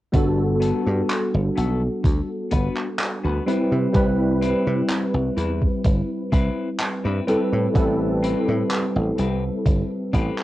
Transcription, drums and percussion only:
0.14 kick, closed hi-hat
0.62 closed hi-hat
1.10 clap, closed hi-hat
1.57 closed hi-hat
2.04 kick, closed hi-hat
2.51 kick, closed hi-hat
2.77 clap
2.99 clap, closed hi-hat
3.48 closed hi-hat
3.94 kick, closed hi-hat
4.42 closed hi-hat
4.90 clap, closed hi-hat
5.38 closed hi-hat
5.62 kick
5.84 kick, closed hi-hat
6.32 kick, closed hi-hat
6.80 clap, closed hi-hat
7.28 closed hi-hat
7.75 kick, closed hi-hat
8.24 closed hi-hat
8.71 clap, closed hi-hat
9.18 closed hi-hat
9.66 kick, closed hi-hat
10.13 kick, closed hi-hat
10.38 clap

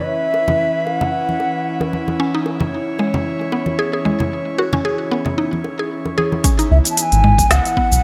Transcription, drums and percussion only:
0.34 high bongo
0.48 high conga, low conga
0.87 high bongo
1.01 low conga
1.29 high conga
1.40 high bongo
1.80 high bongo, high conga
1.93 high conga
2.08 high bongo, high conga
2.46 high bongo
2.60 high conga, low conga
2.99 high bongo
3.14 low conga
3.41 high bongo
3.52 high bongo
3.66 high bongo, high conga
4.06 high conga
4.20 low conga
4.59 high bongo
4.73 high conga, low conga
5.12 high bongo
5.26 low conga
5.53 high conga
5.64 high bongo
6.05 high bongo, high conga
6.18 high conga
6.32 high bongo, high conga
6.44 kick, closed hi-hat, shaker
6.59 closed hi-hat, shaker
6.85 closed hi-hat, shaker
6.97 closed hi-hat, shaker
7.12 closed hi-hat, shaker
7.24 mid tom
7.38 kick, closed hi-hat, shaker
7.51 snare, closed hi-hat, shaker
7.65 closed hi-hat, shaker
7.77 kick
7.92 shaker

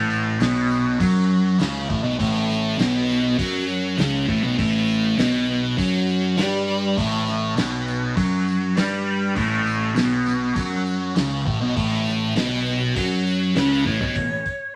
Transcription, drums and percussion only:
0.10 tambourine
0.40 snare, open hi-hat, tambourine
0.70 tambourine
1.00 kick, open hi-hat, tambourine
1.59 snare, open hi-hat, tambourine
1.90 kick
2.19 kick, open hi-hat, tambourine
2.49 snare, tambourine
2.79 snare, open hi-hat, tambourine
3.09 snare, tambourine
3.39 kick, open hi-hat, tambourine
3.69 tambourine
3.98 snare, open hi-hat, tambourine
4.29 kick
4.59 kick, open hi-hat
4.88 tambourine
5.18 snare, open hi-hat, tambourine
5.78 kick, open hi-hat, tambourine
6.08 tambourine
6.38 snare, open hi-hat, tambourine
6.98 kick, open hi-hat
7.27 snare, tambourine
7.57 snare, open hi-hat, tambourine
7.88 tambourine
8.17 kick, open hi-hat, tambourine
8.48 tambourine
8.77 snare, open hi-hat, tambourine
9.36 kick, open hi-hat
9.67 tambourine
9.96 snare, open hi-hat, tambourine
10.26 snare, tambourine
10.56 kick, open hi-hat, tambourine
10.86 tambourine
11.16 snare, open hi-hat, tambourine
11.47 kick
11.77 kick, open hi-hat, tambourine
12.06 snare, tambourine
12.36 snare, open hi-hat, tambourine
12.66 tambourine
12.96 kick, open hi-hat, tambourine
13.27 tambourine
13.56 snare, open hi-hat, tambourine
13.86 kick, tambourine
14.00 floor tom
14.15 kick, open hi-hat
14.46 kick, open hi-hat

